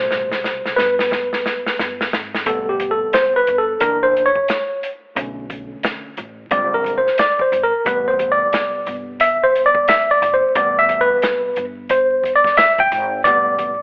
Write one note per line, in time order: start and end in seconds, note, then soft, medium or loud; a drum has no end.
0.00 0.32 A1 loud
0.00 0.75 B2 medium
0.00 0.74 C3 medium
0.00 0.74 G3 soft
0.00 0.81 C5 loud
0.11 snare medium
0.32 snare medium
0.44 snare medium
0.66 snare medium
0.76 1.75 G1 medium
0.76 2.08 B4 medium
0.76 snare medium
0.99 snare medium
1.11 kick medium
1.11 snare medium
1.33 snare medium
1.46 snare medium
1.66 snare medium
1.79 2.07 G1 medium
1.79 snare medium
2.01 snare medium
2.13 2.41 G#1 medium
2.13 snare loud
2.35 snare medium
2.45 3.01 A1 loud
2.45 3.43 C3 medium
2.45 3.43 G3 medium
2.45 3.44 B3 medium
2.45 2.70 A4 medium
2.45 kick loud
2.45 closed hi-hat medium
2.69 2.92 G4 medium
2.80 kick medium
2.80 closed hi-hat medium
2.91 3.14 A4 medium
3.13 3.37 C5 medium
3.13 snare medium
3.13 closed hi-hat medium
3.36 3.59 B4 medium
3.47 3.75 G1 medium
3.47 closed hi-hat medium
3.58 3.82 A4 medium
3.80 4.36 F#1 loud
3.80 4.29 E3 soft
3.80 4.29 A#3 soft
3.80 4.29 D4 medium
3.80 4.04 A#4 medium
3.80 closed hi-hat medium
4.03 4.27 C5 medium
4.17 closed hi-hat medium
4.26 4.89 C#5 loud
4.35 kick medium
4.48 snare loud
4.48 closed hi-hat medium
4.83 closed hi-hat medium
5.15 5.71 B1 loud
5.15 6.13 D3 medium
5.15 6.13 A3 medium
5.15 6.14 C#4 medium
5.15 kick loud
5.15 closed hi-hat medium
5.50 kick medium
5.50 closed hi-hat medium
5.83 snare loud
5.83 closed hi-hat medium
6.17 6.45 A1 medium
6.17 closed hi-hat medium
6.51 7.06 A#1 loud
6.51 6.99 D3 medium
6.51 6.99 G3 soft
6.51 6.99 G#3 medium
6.51 6.99 C4 medium
6.51 6.72 D5 medium
6.51 kick medium
6.51 closed hi-hat medium
6.74 6.97 A#4 medium
6.84 kick medium
6.84 closed hi-hat medium
6.98 7.18 C5 medium
7.07 snare soft
7.18 7.42 D5 medium
7.18 snare loud
7.18 closed hi-hat medium
7.39 7.62 C5 medium
7.39 kick loud
7.52 7.69 G#1 medium
7.52 closed hi-hat medium
7.64 7.84 A#4 medium
7.85 8.41 A1 loud
7.85 10.51 C3 medium
7.85 10.51 G3 medium
7.85 10.52 B3 medium
7.85 8.09 B4 medium
7.85 kick loud
7.85 closed hi-hat medium
8.08 8.31 C5 medium
8.19 kick medium
8.19 closed hi-hat medium
8.32 8.95 D5 medium
8.53 snare loud
8.53 closed hi-hat medium
8.86 9.84 G1 medium
8.86 closed hi-hat medium
9.20 9.44 E5 medium
9.20 closed hi-hat medium
9.43 9.66 C5 medium
9.56 closed hi-hat medium
9.66 9.89 D5 medium
9.75 kick medium
9.88 10.09 E5 loud
9.88 snare loud
9.88 closed hi-hat medium
10.11 10.34 D5 medium
10.22 10.39 F1 medium
10.22 closed hi-hat medium
10.34 10.56 C5 medium
10.55 11.11 A1 loud
10.55 11.53 C3 medium
10.55 11.53 G3 medium
10.55 11.53 B3 medium
10.55 10.79 D5 loud
10.55 kick loud
10.55 closed hi-hat medium
10.79 11.02 E5 loud
10.89 kick medium
10.89 closed hi-hat medium
11.01 11.64 B4 medium
11.22 snare loud
11.22 closed hi-hat medium
11.56 12.54 G1 medium
11.56 closed hi-hat medium
11.89 12.32 C5 medium
11.89 kick loud
11.89 closed hi-hat medium
12.23 kick medium
12.23 closed hi-hat medium
12.36 12.56 D5 medium
12.44 kick loud
12.44 snare soft
12.57 12.81 E5 loud
12.57 snare loud
12.57 closed hi-hat medium
12.78 12.89 F1 loud
12.78 13.22 G5 loud
12.78 kick loud
12.92 13.19 G#1 medium
12.92 closed hi-hat medium
13.24 13.80 A1 loud
13.24 13.73 C3 medium
13.24 13.73 G3 medium
13.24 13.73 B3 medium
13.24 13.82 D5 loud
13.24 kick loud
13.24 closed hi-hat medium
13.59 kick medium
13.59 closed hi-hat medium